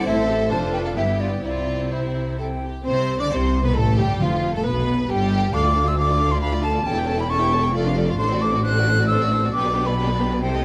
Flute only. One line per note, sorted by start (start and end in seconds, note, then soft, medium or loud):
0.07 0.50 E5 medium
0.51 0.57 A5 loud
0.73 0.78 G5 medium
0.86 0.91 F5 medium
0.96 1.22 E5 medium
1.20 1.44 D5 medium
1.45 1.93 D5 medium
1.92 2.38 C5 medium
2.39 2.64 G5 medium
2.85 3.21 C6 medium
3.20 3.31 D6 medium
3.32 3.68 C6 medium
3.66 3.79 B5 medium
3.77 3.99 A5 medium
4.00 4.20 G5 medium
4.21 4.54 F5 medium
4.56 4.61 A5 medium
4.66 5.12 B5 medium
5.10 5.55 G5 medium
5.53 5.89 D6 loud
5.88 5.98 E6 medium
5.99 6.33 D6 loud
6.31 6.41 C6 medium
6.41 6.62 B5 loud
6.63 6.88 A5 loud
6.86 7.21 G5 medium
7.20 7.31 B5 medium
7.30 7.73 C#6 medium
8.18 8.43 C6 loud
8.41 8.63 D6 medium
8.64 9.06 F#6 loud
9.07 9.51 E6 medium
9.53 9.88 D6 loud
9.86 10.41 B5 medium
10.42 10.65 G5 medium